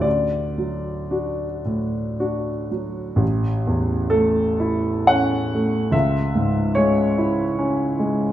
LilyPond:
<<
  \new Staff \with { instrumentName = "Grand piano" } { \time 3/4 \key d \major \tempo 4 = 66 d''2 r4 | \key a \major r4 a'4 fis''4 | e''4 cis''4. r8 | }
  \new Staff \with { instrumentName = "Grand piano" } { \clef bass \time 3/4 \key d \major d,8 fis8 <d' fis'>8 a,8 <d' fis'>8 fis8 | \key a \major a,,8 e,8 a8 e'8 cis'8 a8 | cis,8 gis,8 gis8 e'8 cis'8 gis8 | }
>>